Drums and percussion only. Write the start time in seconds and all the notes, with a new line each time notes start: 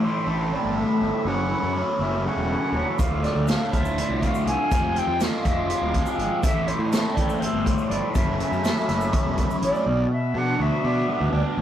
2.99 kick, closed hi-hat, shaker
3.24 snare, closed hi-hat
3.48 snare, closed hi-hat, shaker
3.73 kick, closed hi-hat, shaker
3.85 shaker
3.98 closed hi-hat
4.22 kick, closed hi-hat
4.35 shaker
4.47 closed hi-hat
4.71 kick, closed hi-hat, shaker
4.96 closed hi-hat
5.20 snare, closed hi-hat, shaker
5.45 kick, closed hi-hat, shaker
5.70 closed hi-hat
5.94 kick, closed hi-hat
6.06 shaker
6.19 closed hi-hat
6.43 kick, closed hi-hat, shaker
6.68 closed hi-hat
6.92 snare, closed hi-hat, shaker
7.17 kick, closed hi-hat, shaker
7.29 shaker
7.42 closed hi-hat
7.66 kick, closed hi-hat
7.78 shaker
7.91 closed hi-hat
8.15 kick, closed hi-hat, shaker
8.40 closed hi-hat, shaker
8.53 shaker
8.65 snare, closed hi-hat, shaker
8.77 shaker
8.89 snare, closed hi-hat, shaker
9.01 shaker
9.13 kick, closed hi-hat, shaker
9.38 kick, closed hi-hat
9.50 shaker
9.62 closed hi-hat
9.75 shaker